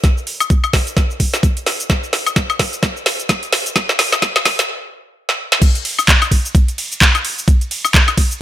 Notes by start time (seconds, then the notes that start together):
0.04 kick, snare, closed hi-hat, shaker
0.18 shaker
0.27 open hi-hat
0.40 closed hi-hat, high woodblock, shaker
0.50 kick, closed hi-hat, shaker
0.64 high woodblock, shaker
0.73 kick, snare, open hi-hat
0.87 closed hi-hat, shaker
0.97 kick, snare, closed hi-hat, shaker
1.11 shaker
1.20 kick, open hi-hat
1.34 snare, closed hi-hat, shaker
1.43 kick, closed hi-hat, shaker
1.57 closed hi-hat, shaker
1.66 snare, open hi-hat
1.80 closed hi-hat, shaker
1.90 kick, snare, closed hi-hat, shaker
2.04 shaker
2.13 snare, open hi-hat
2.27 closed hi-hat, high woodblock, shaker
2.36 kick, snare, closed hi-hat, shaker
2.50 high woodblock, shaker
2.59 kick, snare, open hi-hat
2.73 closed hi-hat, shaker
2.83 kick, snare, closed hi-hat, shaker
2.97 shaker
3.06 snare, open hi-hat
3.20 closed hi-hat, shaker
3.29 kick, snare, closed hi-hat, shaker
3.43 closed hi-hat, shaker
3.53 snare, open hi-hat
3.66 closed hi-hat, shaker
3.76 kick, snare, closed hi-hat, shaker
3.89 snare, shaker
3.99 snare, open hi-hat
4.12 snare, closed hi-hat, high woodblock, shaker
4.22 kick, snare, closed hi-hat, shaker
4.36 snare, high woodblock, shaker
4.45 kick, snare, open hi-hat
4.59 snare, closed hi-hat, shaker
5.29 snare
5.52 snare
5.62 kick, closed hi-hat, crash, shaker
5.75 closed hi-hat, shaker
5.85 open hi-hat, ride
5.99 high woodblock, shaker
6.08 kick, clap, closed hi-hat, shaker
6.22 closed hi-hat, high woodblock, shaker
6.31 kick, open hi-hat, ride
6.45 closed hi-hat, shaker
6.55 kick, closed hi-hat, shaker
6.68 closed hi-hat, shaker
6.78 open hi-hat, ride
6.92 closed hi-hat, shaker
7.01 kick, clap, closed hi-hat, shaker
7.15 closed hi-hat, high woodblock, shaker
7.25 open hi-hat, ride
7.38 shaker
7.48 kick, closed hi-hat, shaker
7.61 closed hi-hat, shaker
7.71 open hi-hat, ride
7.85 high woodblock, shaker
7.94 kick, clap, closed hi-hat, shaker
8.08 closed hi-hat, high woodblock, shaker
8.18 kick, open hi-hat, ride
8.31 closed hi-hat, shaker